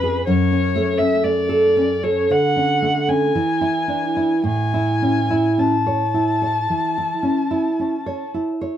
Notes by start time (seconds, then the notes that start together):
Already playing: F2 C#4 B4
0.03 G#4
0.27 F#2 C#5
0.52 C#4
0.76 A3
0.98 C#4 E5
1.23 A3 D5
1.49 A4
1.77 C#4
2.03 A4 C#5
2.30 D3 F#5
2.56 C#4
2.82 A3
3.08 C#4 G#5
3.35 E3
3.61 E4
3.88 D4
4.17 E4
4.44 A2 G#5
4.74 E4
5.02 C#4
5.30 E4
5.58 C#4 A5
5.87 C#5
6.14 E4
6.42 C#5
6.70 E3
6.98 E4
7.23 C#4
7.51 E4
7.80 C#4
8.06 C#5
8.34 E4
8.61 C#5